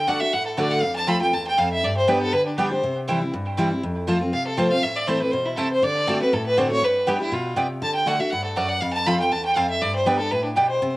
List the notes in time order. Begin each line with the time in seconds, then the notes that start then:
0.07 D3 A3 D4 F#4 D5 F#5
0.20 D4 F#4 E5
0.33 A2 F#5
0.46 A4
0.57 D3 A3 D4 F#4 D5 F#5
0.71 F#5
0.82 F2 F5
0.96 A5
1.07 F3 A3 C4 F4 C5 A5 B5
1.21 C4 F4 G5
1.33 E2 A5
1.47 G5
1.57 F2 C4 F4 C5 F5 A5
1.73 E5
1.83 G2 D5
1.97 C5
2.07 G3 B3 D4 G4 B4 D5 G5
2.22 A4
2.33 D3 B4
2.46 D4
2.57 G3 B3 D4 G4 D5 G5
2.70 D4 G4 C5
2.83 C3
3.08 E3 G3 C4 E4 C5 G5
3.21 C4 E4
3.34 G2
3.57 E3 G3 C4 E4 C5 G5
3.71 C4 E4
3.83 F2
4.07 F3 A3 C4 F4 C5 A5
4.21 C4 F4
4.33 C3 F5
4.47 A4
4.57 F3 A3 C4 F4 C5 A5
4.71 C4 F4 F5
4.83 A2 E5
4.96 D5
5.07 E3 A3 C4 E4 C5 A5
5.20 C4 E4 B4
5.31 B2 C5
5.46 E4
5.57 C3 A3 E4 A4 C5 A5
5.72 C5
5.82 D3 D5
6.07 D3 A3 C4 F#4 D5 A5
6.21 C4 F#4 B4
6.33 A2 A4
6.46 B4
6.57 D3 A3 C4 F#4 C5 D5 A5
6.70 C4 F#4 C#5
6.82 G2 B4
7.07 G3 B3 D4 G4 D5 G5
7.20 D4 E4 G4
7.32 B2 F4
7.56 C3 B3 G4 D5 G5
7.82 D3 A5
7.95 G5
8.06 D3 A3 D4 F#4 D5 F#5
8.20 D4 F#4 E5
8.30 G2 F#5
8.44 A4
8.56 F#2 A3 F#4 D5 F#5
8.69 F#5
8.81 F2 F5
8.93 A5
9.06 F3 A3 C4 F4 C5 A5 B5
9.20 C4 F4 G5
9.32 E2 A5
9.45 G5
9.56 F2 C4 F4 C5 F5 A5
9.70 E5
9.82 G2 D5
9.96 C5
10.06 G3 B3 D4 G4 B4 D5 G5
10.19 D4 G4 A4
10.31 A2 B4
10.44 D4
10.56 B2 B3 G4 D5 G5
10.69 C5
10.82 C3